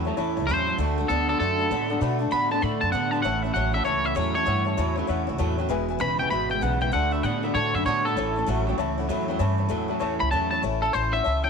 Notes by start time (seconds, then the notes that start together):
Already playing: E2
0.05 A2 F#3 A3 C#4 E4 C#5 E5 A5
0.17 E2 A2 E3 A3 C#4 E4 C#5 E5 A5
0.36 C#2 A3 C#4 E4 C#5 E5 A5
0.47 E2 A2 E3 F#3 A3 C#4 E4 C5 C#5 A5
0.66 A2 F#3 A3 E4 C#5 E5 A5
0.77 D2 D3 A3 D4 F#4 D5 F#5 A5
0.98 A3 D4 F#4 D5 F#5 A5
1.08 D2 D3 A3 B3 D4 F#4 A4 D5
1.28 D3 A3 B3 D4 F#4 A4 D5 F#5 A5
1.38 F#2 D3 A3 A4 D5 F#5
1.42 D4 F#4
1.59 A3 D4 F#4 D5 F#5 B5
1.70 A2 D3 A3 B3 D4 F#4 D5 A5
1.89 D3 A3 B3 D4 F#4 D5 F#5 A5
2.00 B2 D3 A3 D4 F#4 D5 F#5 B5
2.19 A3 D4 F#4 D5 F#5 A5
2.31 A2 D3 A3 B3 D4 F#4 F#5 B5
2.51 D3 A3 B3 D4 F#4 D5 F#5 A5 B5
2.61 A2 D3 A3 D4 F#4 D5 F#5 B5
2.81 F#2 D4 F#4 D5 F#5 A5
2.92 A2 D3 A3 B3 D4 F#4 D5 F#5 A5
3.11 D3 B3 D4 F#4 D5 F#5 A5 B5
3.16 A3
3.22 A1 A2 E3 A3 C#4 E4 C#5 E5 F#5 A5
3.43 C#4 E4 C#5 E5 A5
3.47 A3
3.54 A1 A2 E3 F#3 A3 C#4 E4 C#5 E5 F#5 A5
3.73 A2 F#3 A3 C#4 E4 C#5 E5 A5
3.84 C#2 A2 E3 A3 C#4 E4 C#5 E5 A5
4.04 A3 C#4 E4 C#5 E5 F#5
4.15 E2 A2 E3 F#3 A3 C#4 E4 C#5 E5 A5
4.34 A2 F#3 A3 C#4 E4 C#5 E5 A5
4.46 G2 A2 E3 A3 C#4 E4 C#5 E5 F#5
4.65 A3 C#4 E4 C#5 E5 A5
4.77 E2 A2 E3 F#3 A3 C#4 E4 C#5 E5 A5
4.96 A2 F#3 A3 C#4 E4 C#5 E5 B5
5.07 E2 A2 E3 A3 C#4 E4 C#5 E5 F#5
5.27 C#2 A3 C#4 E4 C#5 E5 F#5
5.38 E2 A2 E3 F#3 A3 C#4 E4 C#5 E5 A5
5.57 A2 F#3 A3 C#4 E4 C#5 E5 G5
5.69 E1 E2 B2 E3 G#3 B3 E4 B4 E5 G#5
5.88 E3 G#3 B3 E4 B4 E5 G#5
5.99 E1 E2 B2 C#3 E3 G#3 B3 E4 B4 B5
6.19 E2 C#3 E3 G#3 B3 E4 B4 E5 G5 G#5
6.30 G#1 E2 B2 E3 G#3 B3 E4 B4 E5 B5
6.49 E3 G#3 B3 E4 B4 E5 G5 B5
6.61 B1 E2 B2 C#3 E3 G#3 B3 E4 B4 F#5 G#5
6.81 E2 C#3 E3 G#3 B3 E4 B4 E5 F#5 G5
6.92 D2 D3 A3 D4 F#4 D5 F#5 A5
7.11 A3 D4 F#4 D5 E5 B5
7.23 A2 D3 A3 B3 D4 F#4 D5 F#5 B5
7.43 D3 A3 B3 D4 F#4 D5 E5 F#5 B5
7.54 A2 D3 A3 D4 F#4 C#5 D5 F#5 A5
7.74 F#2 A3 D4 F#4 D5 E5 F#5 B5
7.85 A2 D3 A3 B3 D4 F#4 C#5 D5 F#5 A5
8.05 D3 A3 B3 D4 F#4 A4 D5 F#5 B5
8.16 A1 A2 E3 A3 C#4 E4 C#5 E5 A5
8.36 A3 C#4 E4 C#5 E5 A5
8.46 A1 A2 E3 F#3 A3 C#4 E4 C#5 E5 F#5
8.66 A2 F#3 A3 C#4 E4 C#5 E5 G5
8.78 C#2 A2 E3 A3 C#4 E4 C#5 E5 A5
8.97 A3 C#4 E4 C#5 E5 F#5
9.08 E2 A2 E3 F#3 A3 C#4 E4 C#5 E5 B5
9.28 A2 F#3 A3 C#4 E4 C#5 E5 G5
9.39 G2 A2 E3 A3 C#4 E4 C#5 E5 A5
9.58 A3 C#4 E4 C#5 E5 A5
9.69 E2 A2 E3 F#3 A3 C#4 E4 C#5 E5 A5
9.88 A2 F#3 A3 C#4 E4 C#5 E5 A5
9.99 E2 A2 E3 A3 C#4 E4 C#5 E5 A5
10.19 C#2 A3 C#4 E4 C#5 E5 A5 B5
10.31 E2 A2 E3 F#3 A3 C#4 E4 C#5 E5 A5
10.51 A2 F#3 A3 C#4 E4 C#5 E5 A5 B5
10.62 A1 A2 E3 A3 C#4 E4 C#5 E5 A5
10.82 C#4 E4 A4 C#5 E5
10.93 A1 A2 E3 A3 C#4 E4 C5 C#5 A5
11.13 A3 C#4 E4 C#5 E5 F#5
11.23 C#2 E3 A3 C#4 C#5 E5 A5
11.28 E4
11.44 A3 C#4 E4 C#5 E5 G5 A5